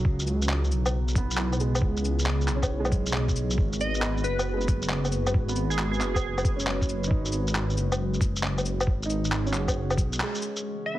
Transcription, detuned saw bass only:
0.05 0.73 C#2 loud
0.72 1.81 B1 loud
1.82 2.49 C#2 loud
2.48 3.57 B1 loud
3.58 4.26 G#1 medium
4.24 5.33 F#1 loud
5.35 6.03 G#1 loud
6.01 7.10 F#1 loud
7.11 7.79 G#1 loud
7.77 8.87 F#1 loud
8.87 9.55 G#1 loud
9.54 9.97 F#1 loud
9.98 10.20 B1 loud

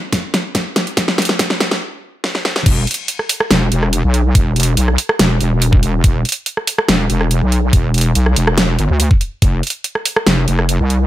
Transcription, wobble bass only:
2.66 2.86 E1 loud
3.50 3.70 E1 loud
3.72 4.02 E1 medium
4.04 4.33 B1 medium
4.35 4.76 E1 medium
4.77 4.97 B1 loud
5.19 5.39 E1 loud
5.41 6.02 E1 medium
6.04 6.24 E1 loud
6.89 7.08 E1 loud
7.10 7.40 E1 medium
7.42 7.71 B1 medium
7.73 8.14 E1 medium
8.15 8.35 B1 medium
8.36 8.77 E1 loud
8.79 8.88 G1 medium
8.90 9.09 D2 medium
9.42 9.62 F1 medium
10.27 10.46 F1 loud
10.48 10.78 F1 loud
10.80 11.07 C2 loud

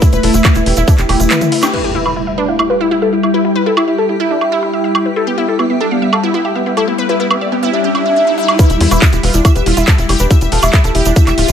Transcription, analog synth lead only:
0.02 0.08 E4 medium
0.13 0.18 E4 medium
0.23 0.29 A4 loud
0.34 0.40 E4 medium
0.45 0.51 E4 medium
0.55 0.61 E4 medium
0.66 0.72 E4 medium
0.77 0.83 E4 medium
0.88 1.65 E4 loud
1.73 1.79 B4 loud
1.84 1.90 E4 medium
1.95 2.01 E4 medium
2.06 2.11 B4 loud
2.16 2.22 E4 medium
2.27 2.33 E4 medium
2.38 2.43 B4 medium
2.48 2.54 E4 medium
2.59 2.65 E4 medium
2.70 2.76 B4 medium
2.80 2.86 E4 medium
2.91 2.97 E4 medium
3.02 3.08 A4 medium
3.13 3.18 E4 medium
3.23 3.29 E4 medium
3.34 3.40 B4 medium
3.45 3.51 E4 medium
3.56 3.61 E4 medium
3.66 3.72 A4 medium
3.77 3.83 E4 medium
3.88 3.93 E4 medium
3.98 4.04 A4 medium
4.09 4.15 E4 medium
4.20 4.26 E4 medium
4.31 5.08 E4 medium
5.16 5.22 A4 loud
5.27 5.33 B3 medium
5.38 5.43 B3 medium
5.48 5.54 A4 loud
5.59 5.65 B3 medium
5.70 5.76 B3 medium
5.81 5.86 A4 medium
5.91 5.97 B3 medium
6.02 6.08 B3 medium
6.13 6.18 A4 medium
6.23 6.29 B3 medium
6.34 6.40 B3 medium
6.45 6.51 G4 medium
6.56 6.61 B3 medium
6.66 6.72 B3 medium
6.77 6.83 A4 medium
6.88 6.93 B3 medium
6.98 7.04 B3 medium
7.09 7.15 B4 medium
7.20 7.26 B3 medium
7.31 7.36 B3 medium
7.41 7.47 D5 medium
7.52 7.58 B3 medium
7.63 7.68 B3 medium
7.73 8.51 E5 loud
8.59 8.65 B4 loud
8.70 8.76 E4 medium
8.81 8.86 E4 medium
8.91 8.97 B4 loud
9.02 9.08 E4 medium
9.13 9.18 E4 medium
9.23 9.29 B4 loud
9.34 9.40 E4 medium
9.45 9.51 E4 medium
9.56 9.61 B4 medium
9.66 9.72 E4 medium
9.77 9.83 E4 medium
9.88 9.93 A4 medium
9.98 10.04 E4 medium
10.09 10.15 E4 medium
10.20 10.26 B4 medium
10.31 10.36 E4 medium
10.41 10.47 E4 medium
10.52 10.58 A4 loud
10.63 10.69 E4 medium
10.73 10.79 E4 medium
10.84 10.90 A4 medium
10.95 11.01 E4 medium
11.06 11.11 E4 medium
11.16 11.52 E4 medium

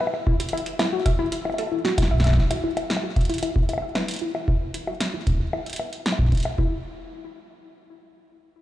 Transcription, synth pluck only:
0.00 0.10 B4 medium
0.27 0.37 E4 medium
0.40 0.52 E4 medium
0.53 0.63 E4 loud
0.79 0.85 E4 medium
0.93 1.02 F#4 medium
1.06 1.16 E5 medium
1.19 1.31 E4 loud
1.32 1.44 E4 medium
1.45 1.58 E4 medium
1.58 1.71 A4 loud
1.72 1.81 E4 medium
1.85 1.91 F#4 medium
1.98 2.08 E4 medium
2.11 2.17 E5 medium
2.24 2.34 E5 loud
2.37 2.47 E4 medium
2.51 2.63 E4 medium
2.64 2.74 E4 loud
2.90 2.96 E4 medium
3.03 3.13 F#4 medium
3.16 3.26 E5 medium
3.30 3.41 E4 loud
3.43 3.55 E4 medium
3.56 3.68 E4 medium
3.69 3.79 E4 medium
3.82 3.88 E5 medium
3.95 4.05 B4 medium
4.22 4.31 E4 medium
4.35 4.47 E4 medium
4.48 4.58 E4 loud
4.74 4.80 E4 medium
4.87 4.97 F#4 medium
5.01 5.10 E5 medium
5.14 5.26 E4 loud
5.27 5.39 E4 medium
5.40 5.52 E4 medium
5.53 5.63 E4 medium
5.66 5.72 E5 medium
5.80 5.89 B4 medium
6.06 6.16 E4 medium
6.19 6.31 E4 medium
6.32 6.42 E4 loud
6.59 6.83 E4 medium

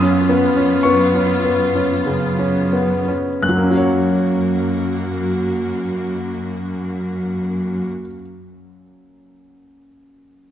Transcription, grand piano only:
0.00 3.38 F#2 medium
0.00 0.45 C#4 soft
0.00 0.80 D#6 medium
0.29 0.73 B3 soft
0.56 0.84 C#4 soft
0.83 1.31 B3 soft
0.83 2.69 C#6 soft
1.15 1.44 C#4 soft
1.45 1.93 B3 soft
1.75 2.25 C#4 soft
2.06 2.59 C#3 soft
2.39 2.95 C#4 soft
2.73 3.29 B3 soft
3.08 3.42 C#4 soft
3.42 7.86 F#2 soft
3.42 7.86 F#6 soft
3.49 7.92 F#3 soft
3.57 8.00 A#3 soft
3.63 8.07 C#4 soft
3.71 8.14 F#4 soft
3.77 8.20 C#5 soft

